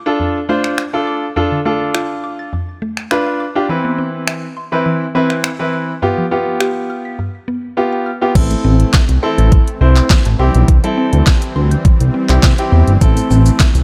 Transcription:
0.06 D4 F4 A4 A6
0.20 F2
0.49 A3 D4 F4 C5
0.64 finger snap
0.78 finger snap
0.93 D4 F4 A4 F5
1.07 D6
1.36 F2 D4 F4 A4
1.52 D3
1.65 A3 D4 F4 A4
1.95 F4, finger snap
2.24 D6
2.39 A6
2.53 F2
2.82 A3
2.97 finger snap
3.11 D4 F4 B4, finger snap
3.26 F5
3.40 D6
3.55 D4 F4 G4
3.69 E3 C4 E4 B4
3.85 B3
3.98 C4
4.28 E5, finger snap
4.57 C6
4.72 E3 C4 E4 B4 G6
4.86 E3
5.15 E3 C4 E4 B4
5.30 finger snap
5.44 finger snap
5.59 E3 C4 E4 B4 B5
5.73 C6
6.02 G2 B3 F4 G4
6.18 F3
6.31 B3 F4 G4
6.61 G4, finger snap
6.90 F6
7.05 B6
7.19 G2
7.48 B3
7.77 B3 F4 G4
7.92 G5
8.06 F6
8.21 B3 F4 G4
8.35 A1 E3 A3 C4 E4 A4, kick, closed hi-hat, crash
8.51 A3, closed hi-hat
8.64 A1 C4
8.80 closed hi-hat
8.94 E5, kick, snare, clap, closed hi-hat
9.09 C2, closed hi-hat
9.23 C4 E4 A4 C6
9.38 A1 A6, closed hi-hat
9.52 E3, kick, closed hi-hat
9.68 closed hi-hat
9.81 C2 C4 E4 C5
9.96 clap, closed hi-hat
10.10 kick, snare, clap, closed hi-hat
10.25 A1 A5, closed hi-hat
10.39 C2 G3 C4 E4 G4 C6
10.54 B1, closed hi-hat
10.68 C2 E3, kick, closed hi-hat
10.84 G3 C4 E4 A4, closed hi-hat
10.97 C4
11.13 D2, closed hi-hat
11.27 E5, kick, snare, clap, closed hi-hat
11.42 closed hi-hat
11.56 D2 C6
11.71 G6, closed hi-hat
11.85 E3, kick, closed hi-hat
12.00 C2, closed hi-hat
12.14 C4
12.29 C2 C4 E4 G4, clap, closed hi-hat
12.43 C3, kick, snare, clap, closed hi-hat
12.58 C4 E4 G4 G5, closed hi-hat
12.72 E2 C6
12.88 G1, closed hi-hat
13.01 A1 E3 A3 C4 E4 A4, kick, closed hi-hat, shaker
13.17 A3, closed hi-hat, shaker
13.30 A1 C4, shaker
13.46 closed hi-hat, shaker
13.60 E5, kick, snare, clap, closed hi-hat, shaker
13.75 C2, closed hi-hat, shaker

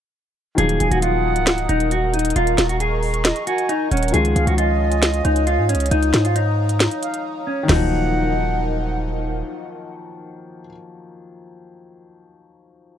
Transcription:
0.55 D#1 D#3 F3 F#3 G#4 A#4 D#5 A#5 D#6, closed hi-hat
0.60 A#3 D#4
0.69 closed hi-hat
0.80 D#1 G#5, closed hi-hat
0.91 D#1 F#4, closed hi-hat
1.02 F4 F#5, closed hi-hat
1.36 C#1, closed hi-hat
1.47 snare, closed hi-hat
1.58 closed hi-hat
1.69 D#1 D#4, closed hi-hat
1.80 closed hi-hat
1.91 F#4, closed hi-hat
2.14 D#4, closed hi-hat
2.19 closed hi-hat
2.25 closed hi-hat
2.30 closed hi-hat
2.36 D#1 F4 C#6, closed hi-hat
2.47 closed hi-hat
2.58 D#1, snare, closed hi-hat
2.69 F#4, closed hi-hat
2.80 G#4, closed hi-hat
3.03 open hi-hat
3.14 closed hi-hat
3.25 D#5, snare, closed hi-hat
3.36 closed hi-hat
3.47 F#4 G#5, closed hi-hat
3.58 closed hi-hat
3.69 D#4, closed hi-hat
3.91 D#1 C#4 F#5, closed hi-hat
3.97 closed hi-hat
4.03 closed hi-hat
4.08 D#3, closed hi-hat
4.12 C#2 F3 G#3 C#4 G#4 C#5 F5 G#5 D#6, closed hi-hat
4.17 F4
4.25 closed hi-hat
4.36 C#2 F5, closed hi-hat
4.47 C#2 F#4, closed hi-hat
4.58 F4 D#5, closed hi-hat
4.92 closed hi-hat
5.03 snare, closed hi-hat
5.14 closed hi-hat
5.25 C#2 D#4, closed hi-hat
5.36 closed hi-hat
5.47 F4, closed hi-hat
5.58 G#2
5.69 C#4, closed hi-hat
5.75 C#2, closed hi-hat
5.80 closed hi-hat
5.86 closed hi-hat
5.91 C#2 D#4 A#5, closed hi-hat
6.03 closed hi-hat
6.14 G#2, snare, closed hi-hat
6.25 F4, closed hi-hat
6.36 D#4, closed hi-hat
6.69 closed hi-hat
6.80 snare, closed hi-hat
6.91 closed hi-hat
7.02 F5, closed hi-hat
7.14 closed hi-hat
7.47 C#4
7.63 D#3
7.67 D#1 F#3 D#4 A#4 D#5 F#5, snare, floor tom, crash
7.71 A#3
7.75 F3

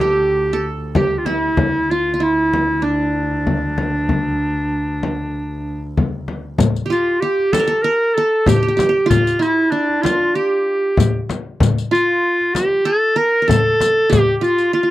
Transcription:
Already playing: D2 F4 A4
0.00 G4, frame drum
0.53 A4
0.95 G4, frame drum
1.18 F4
1.25 E4, frame drum
1.57 D2, frame drum
1.90 F4
2.14 F4
2.20 E4
2.54 frame drum
2.82 D4
3.47 frame drum
3.78 frame drum
4.09 frame drum
5.03 frame drum
5.97 frame drum
6.28 frame drum
6.58 riq, frame drum, darbuka dum
6.76 riq
6.86 G4
6.90 F4, riq
7.20 G4
7.39 darbuka ka
7.52 A4, riq, darbuka tek, frame drum
7.59 A#4
7.67 A4
7.82 A#4
8.14 A4
8.46 G4, riq, frame drum, darbuka dum
8.56 G4
8.63 G4
8.68 G4
8.77 G4, riq, darbuka tek, frame drum
8.83 G4
8.89 G4
9.06 F4
9.10 riq, darbuka dum, frame drum
9.27 riq
9.39 E4, riq
9.71 D4
9.89 darbuka ka
10.02 F4, darbuka tek, frame drum
10.06 riq
10.35 G4
10.97 riq, frame drum, darbuka dum
11.29 riq, darbuka tek, frame drum
11.60 riq, frame drum, darbuka dum
11.78 riq
11.91 F4, riq
12.41 darbuka ka
12.54 G4, riq, darbuka tek, frame drum
12.85 A4
13.16 A#4
13.42 A#4
13.48 A4, riq, frame drum, darbuka dum
13.80 riq, darbuka tek, frame drum
14.10 G4, riq, darbuka dum, frame drum
14.38 F4 G4
14.43 F4, riq
14.58 riq, darbuka ka
14.73 F4
14.83 F4

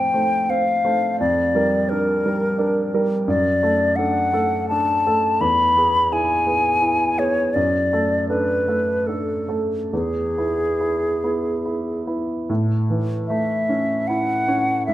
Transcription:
Already playing: F2 A3 C4 C5 G5
0.14 A3 C5
0.49 C4 C5 F5
0.85 A3 C5
1.20 F2 D5
1.55 G3 A#4
1.89 D4 A#4
2.26 G3 A#4
2.58 D4 A#4
2.94 G3 A#4
3.28 F#2 D5
3.63 A3 A4
3.96 D4 A4 F#5
4.33 A3 A4
4.69 D4 A4 A5
5.06 A3 A4
5.41 E2 B5
5.77 B3 G#4
6.12 E4 G#4 G#5
6.47 B3 G#4
6.82 E4 G#4
7.18 B3 G#4 C#5
7.54 F#2 D5
7.93 A3 A4
8.29 D4 A4 B4
8.68 A3 A4
9.07 D4 A4
9.48 A3 A4
9.92 E2 G#4
10.38 B3 E4
10.80 E4
11.24 B3 E4
11.65 E4
12.07 B3 E4
12.49 A2
12.90 E3
13.27 A3 E5
13.69 C#4
14.07 E4 F#5
14.48 C#4
14.86 G#2 E5

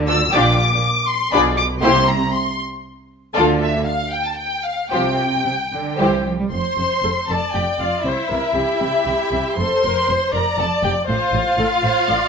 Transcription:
Already playing: D2 D3
0.08 D4 F4 A4 D5 E6
0.32 A#1 A#2 D4 F4 G4 D5 D6
1.08 C6
1.32 B1 B2 D4 F4 G#4 D5 B5
1.57 D6
1.82 C2 C3 A#3 E4 G4 C5 C6
2.07 A#5
2.33 C6
3.35 D2 D3 A3 F4 A4 D5
3.61 E5
3.86 F5
4.12 G5
4.26 A5
4.37 G5
4.64 F5
4.90 C2 C3 F3 F4 G4 C5 G5
5.45 C3
5.72 D3
5.98 C2 E3 G3 E4 G4 C5
6.25 F3
6.40 G3
6.51 F1 F2 C5 C6
6.77 F1 F2
7.03 F1 F2 A4
7.28 F1 F2 A4 D5 A5
7.53 F1 F2 G4 G5
7.79 F1 F2 F4 F5
8.04 C2 C3 E4 C5 E5
8.29 C2 C3 A#4
8.54 C2 C3 G4
8.80 C2 C3
9.05 C2 C3
9.31 C2 C3
9.57 F1 F2 A4 C5 C6
9.83 F1 F2 A#4
10.08 F1 F2 C5
10.33 F1 F2 A#4 D5 A#5
10.58 F1 F2 A4 A5
10.83 F1 F2 G4 G5
11.07 A1 A2 F4 C5 F5
11.32 A1 A2
11.58 A1 A2 A4
11.83 A1 A2 C5
12.08 A1 A2 D5

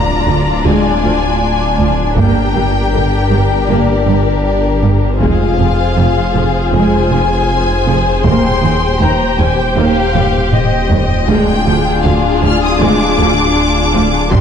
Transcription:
Already playing: D1 D4 F4 D5 A#5, impact
0.27 D2 F3, taiko
0.65 D2 G#3 G#5
1.03 D2 F3
1.79 D2 F3
2.17 G1 G2 A#3 G4 A#4 G5, taiko
2.55 G1 G2 G3
2.93 G1 G2 D3
3.31 G1 G2 G3
3.68 G1 G2 A#3 D5
4.07 G1 G2 G3
4.45 D5
4.82 G1 G2 G3
5.20 F1 F2 G#3 F4 G#4 C5 F5, taiko
5.59 F1 F2 F3
5.97 F1 F2 C3
6.35 F1 F2 F3
6.73 F1 F2 G#3 G#5
7.11 F1 F2 F3
7.87 F1 F2 F3
8.24 D#1 D#2 A#3 G5 C6, taiko
8.63 D#2 A#3
9.01 D#2 D#3 G4 A#5
9.38 D#2 G3 G#5
9.58 G5
9.76 D#2 A#3 F5
10.15 D#2 G3, taiko low-mid
10.53 D#5, taiko low-mid
10.91 D#2 G3, taiko low
11.28 D1 D2 G#3 D4 F4 G#4 G5, taiko
11.67 D2 F3
12.04 D2 D3 F5
12.43 D2 F3 F6
12.63 D#6
12.80 D2 G#3 D6
13.19 D2 F3
13.94 D2 F3
14.32 G1 G2 G3 G4 A#4 C6, taiko

